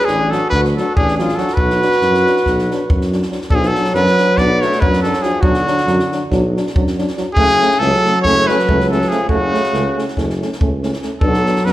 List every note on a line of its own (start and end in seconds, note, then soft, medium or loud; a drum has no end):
0.00 0.10 G#4 medium
0.05 0.32 A1 medium
0.05 0.35 D4 medium
0.05 0.32 G#4 medium
0.05 snare soft
0.30 0.39 F#3 medium
0.30 0.40 D4 medium
0.30 0.53 F#4 medium
0.30 0.49 A4 medium
0.30 snare soft
0.50 0.76 D2 loud
0.50 0.62 B4 medium
0.50 kick medium
0.50 snare soft
0.54 0.65 F#4 medium
0.65 snare soft
0.75 0.84 F#3 medium
0.75 0.85 D4 medium
0.75 0.96 F#4 medium
0.75 0.95 A4 medium
0.75 snare soft
0.96 1.30 A1 medium
0.96 1.17 D4 medium
0.96 1.17 G#4 medium
0.96 kick medium
1.08 snare soft
1.17 1.26 F#3 medium
1.17 1.27 D4 medium
1.17 1.40 F4 medium
1.17 1.37 G#4 medium
1.17 snare soft
1.29 snare soft
1.35 1.45 F#3 medium
1.35 1.46 D4 medium
1.35 1.58 F#4 medium
1.35 1.56 A4 medium
1.35 snare soft
1.48 snare soft
1.54 1.82 B1 medium
1.54 3.11 B4 loud
1.54 kick medium
1.58 3.13 F#4 medium
1.70 snare soft
1.81 1.89 F#3 medium
1.81 1.90 D4 medium
1.81 snare soft
1.92 snare soft
2.01 2.26 F#2 medium
2.01 snare soft
2.14 snare soft
2.25 2.33 F#3 soft
2.25 2.34 D4 medium
2.25 snare soft
2.37 snare soft
2.46 2.71 B1 medium
2.46 kick medium
2.46 snare soft
2.59 snare soft
2.70 2.78 F#3 medium
2.70 2.79 D4 medium
2.70 snare soft
2.90 3.24 F#2 medium
2.90 kick loud
3.01 snare soft
3.11 3.19 F#3 medium
3.11 3.20 D4 medium
3.11 snare soft
3.22 snare soft
3.30 3.38 F#3 soft
3.30 3.38 D4 soft
3.30 snare soft
3.42 snare soft
3.50 3.75 B1 loud
3.50 3.60 F#3 medium
3.50 3.61 F#3 medium
3.50 3.60 D4 medium
3.50 3.57 A4 medium
3.50 kick medium
3.55 3.69 G#4 medium
3.59 3.71 F3 medium
3.59 snare soft
3.67 3.96 F#3 medium
3.67 3.94 A4 loud
3.74 3.82 F#3 medium
3.74 3.82 D4 medium
3.74 snare soft
3.85 snare soft
3.93 4.08 F#2 loud
3.93 4.03 F#3 medium
3.93 4.41 F#3 medium
3.93 4.04 D4 medium
3.93 4.39 B4 loud
3.93 snare soft
4.06 snare soft
4.18 4.26 F#3 soft
4.18 4.27 D4 medium
4.18 snare soft
4.37 4.62 B1 medium
4.37 4.47 F#3 medium
4.37 4.65 B3 medium
4.37 4.48 D4 medium
4.37 4.63 D5 medium
4.37 kick medium
4.37 snare soft
4.61 4.70 F#3 medium
4.61 4.85 A3 medium
4.61 4.70 D4 medium
4.61 4.82 C#5 medium
4.61 snare soft
4.72 snare soft
4.80 5.16 F#2 medium
4.80 4.91 F#3 medium
4.80 5.04 F#3 medium
4.80 4.92 D4 medium
4.80 5.02 B4 medium
4.80 kick medium
4.93 snare soft
5.03 5.11 F#3 medium
5.03 5.26 F#3 medium
5.03 5.12 D4 medium
5.03 5.24 A4 medium
5.03 snare soft
5.13 snare soft
5.22 5.45 F3 medium
5.22 5.31 F#3 medium
5.22 5.31 D4 medium
5.22 5.43 G#4 medium
5.22 snare soft
5.41 5.67 B1 medium
5.41 6.32 D3 medium
5.41 5.51 F#3 medium
5.41 5.52 D4 medium
5.41 6.30 F#4 medium
5.41 kick loud
5.54 snare soft
5.67 5.75 F#3 medium
5.67 5.75 D4 medium
5.67 snare soft
5.78 snare soft
5.86 6.00 F#2 loud
5.86 5.96 F#3 medium
5.86 5.97 D4 medium
5.86 snare soft
5.99 snare soft
6.11 6.19 F#3 medium
6.11 6.20 D4 medium
6.11 snare soft
6.30 6.56 B1 loud
6.30 6.40 F#3 medium
6.30 6.41 D4 medium
6.30 kick medium
6.30 snare soft
6.55 6.63 F#3 medium
6.55 6.64 D4 medium
6.55 snare soft
6.67 snare soft
6.74 7.08 F#2 medium
6.74 6.84 F#3 medium
6.74 6.85 D4 medium
6.74 kick medium
6.87 snare soft
6.97 7.05 F#3 medium
6.97 7.06 D4 medium
6.97 snare soft
7.08 snare soft
7.17 7.24 F#3 medium
7.17 7.24 D4 medium
7.17 snare soft
7.34 7.60 F#1 medium
7.34 7.84 C#3 medium
7.34 7.46 A3 medium
7.34 7.46 C#4 medium
7.34 7.80 G#4 loud
7.34 kick medium
7.50 snare soft
7.60 7.68 A3 medium
7.60 7.68 C#4 medium
7.60 snare soft
7.71 snare soft
7.79 7.93 C#2 loud
7.79 7.90 A3 medium
7.79 7.91 C#4 medium
7.79 8.22 A4 loud
7.79 snare soft
7.83 8.26 F#3 medium
7.93 snare soft
8.05 8.12 A3 medium
8.05 8.13 C#4 medium
8.05 snare soft
8.22 8.49 F#1 loud
8.22 8.34 A3 medium
8.22 8.34 C#4 medium
8.22 8.49 C#5 loud
8.22 kick medium
8.22 snare soft
8.27 8.52 A3 medium
8.47 8.91 F#3 medium
8.47 8.57 A3 medium
8.47 8.57 C#4 medium
8.47 8.89 B4 medium
8.47 snare soft
8.59 snare soft
8.67 9.02 C#2 medium
8.67 8.76 A3 medium
8.67 8.78 C#4 medium
8.67 kick medium
8.81 snare soft
8.89 9.12 F#3 medium
8.89 8.98 A3 medium
8.89 8.98 C#4 medium
8.89 9.10 A4 medium
8.89 snare soft
9.02 snare soft
9.09 9.29 F3 medium
9.09 9.18 A3 medium
9.09 9.17 C#4 medium
9.09 9.28 G#4 medium
9.09 snare soft
9.28 9.53 F#1 medium
9.28 10.13 C#3 medium
9.28 9.38 A3 medium
9.28 9.38 C#4 medium
9.28 10.13 F#4 loud
9.28 kick medium
9.52 9.60 A3 medium
9.52 9.61 C#4 medium
9.52 snare soft
9.63 snare soft
9.71 9.87 C#2 medium
9.71 9.81 A3 medium
9.71 9.82 C#4 medium
9.71 snare soft
9.96 10.04 A3 medium
9.96 10.04 C#4 medium
9.96 snare soft
10.08 snare soft
10.15 10.41 F#1 medium
10.15 10.26 A3 soft
10.15 10.25 C#4 medium
10.15 kick medium
10.15 snare soft
10.30 snare soft
10.40 10.48 A3 medium
10.40 10.49 C#4 medium
10.40 snare soft
10.52 snare soft
10.60 10.95 C#2 medium
10.60 10.69 A3 medium
10.60 10.69 C#4 medium
10.60 kick medium
10.82 10.90 A3 medium
10.82 10.90 C#4 medium
10.82 snare soft
10.93 snare soft
11.02 11.10 A3 medium
11.02 11.10 C#4 soft
11.02 snare soft
11.20 11.45 B1 loud
11.20 11.66 F#3 medium
11.20 11.31 B3 medium
11.20 11.30 D4 medium
11.20 11.67 A4 medium
11.20 kick medium
11.34 snare soft
11.45 11.53 B3 medium
11.45 11.53 D4 medium
11.45 snare soft
11.56 snare soft
11.65 11.73 F#2 loud
11.65 11.73 F#3 medium
11.65 11.73 B3 medium
11.65 11.73 D4 soft
11.65 11.73 B4 loud
11.65 snare soft